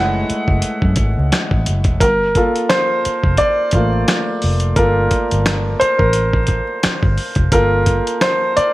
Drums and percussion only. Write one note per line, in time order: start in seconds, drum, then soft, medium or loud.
0.30 closed hi-hat medium
0.48 kick loud
0.62 closed hi-hat medium
0.82 kick medium
0.96 kick medium
0.96 closed hi-hat medium
1.32 finger snap medium
1.32 snare loud
1.32 closed hi-hat medium
1.51 kick loud
1.66 closed hi-hat medium
1.84 kick medium
1.84 closed hi-hat soft
2.00 kick loud
2.00 closed hi-hat medium
2.35 kick medium
2.35 closed hi-hat medium
2.56 closed hi-hat soft
2.70 finger snap medium
2.70 snare loud
2.70 closed hi-hat medium
3.05 closed hi-hat medium
3.24 kick medium
3.37 kick medium
3.37 closed hi-hat medium
3.71 kick medium
3.71 closed hi-hat medium
4.08 finger snap medium
4.08 snare loud
4.08 closed hi-hat medium
4.42 open hi-hat soft
4.60 closed hi-hat soft
4.76 kick loud
4.76 closed hi-hat medium
5.11 kick medium
5.11 closed hi-hat medium
5.31 closed hi-hat soft
5.46 finger snap medium
5.46 snare loud
5.46 closed hi-hat medium
5.81 closed hi-hat medium
5.99 kick loud
6.13 closed hi-hat medium
6.34 kick medium
6.47 kick medium
6.47 closed hi-hat medium
6.83 finger snap medium
6.83 snare loud
6.83 closed hi-hat medium
7.03 kick loud
7.18 open hi-hat soft
7.35 kick medium
7.35 closed hi-hat soft
7.52 kick loud
7.52 closed hi-hat medium
7.86 kick medium
7.86 closed hi-hat medium
8.07 closed hi-hat medium
8.21 finger snap medium
8.21 snare loud
8.21 closed hi-hat medium
8.57 closed hi-hat medium